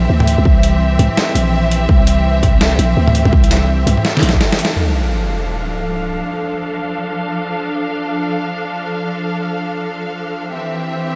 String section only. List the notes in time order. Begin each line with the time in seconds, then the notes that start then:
Already playing: E3 C4 G4 E5
4.76 F3 D4 A4 F5
10.52 E3 C4 G4 E5